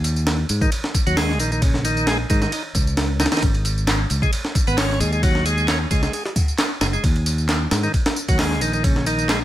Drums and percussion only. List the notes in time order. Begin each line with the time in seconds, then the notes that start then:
0.04 ride, tambourine
0.16 tambourine
0.27 snare, ride, tambourine
0.49 ride, tambourine
0.61 kick, tambourine
0.72 ride, tambourine
0.84 snare
0.94 kick, ride, tambourine
1.07 ride, tambourine
1.17 snare, open hi-hat, tambourine
1.29 snare
1.39 ride, tambourine
1.52 tambourine
1.62 kick, ride, tambourine
1.74 snare
1.85 ride, tambourine
1.97 tambourine
2.07 snare, ride, tambourine
2.30 kick, ride, tambourine
2.42 snare, tambourine
2.52 ride, tambourine
2.75 kick, ride, tambourine
2.87 tambourine
2.97 snare, ride, tambourine
3.20 snare, ride, tambourine
3.26 snare, ride
3.32 snare, ride, tambourine
3.37 snare, ride
3.42 kick, ride, tambourine
3.55 ride
3.65 ride, tambourine
3.78 tambourine
3.87 snare, clap, ride, tambourine
4.10 ride, tambourine
4.22 kick, tambourine
4.33 ride, tambourine
4.45 snare
4.55 kick, ride, tambourine
4.67 ride, tambourine
4.78 snare, clap, open hi-hat, tambourine
4.90 snare
5.00 ride, tambourine
5.12 tambourine
5.23 kick, ride, tambourine
5.35 snare
5.46 ride, tambourine
5.58 tambourine
5.68 snare, clap, ride, tambourine
5.91 kick, ride, tambourine
6.03 snare, tambourine
6.13 ride, tambourine
6.25 snare
6.36 kick, ride, tambourine
6.48 tambourine
6.58 snare, clap, ride, tambourine
6.81 snare, ride, tambourine
6.93 tambourine
7.04 kick, ride, tambourine
7.16 ride
7.26 ride, tambourine
7.38 tambourine
7.49 snare, clap, ride, tambourine
7.71 snare, ride, tambourine
7.83 tambourine
7.94 kick, ride, tambourine
8.06 snare, ride
8.16 tambourine
8.28 kick, ride, tambourine
8.39 snare, clap, open hi-hat, tambourine
8.51 snare
8.61 ride, tambourine
8.73 tambourine
8.84 kick, ride, tambourine
8.96 snare
9.06 ride, tambourine
9.18 tambourine
9.29 snare, clap, ride, tambourine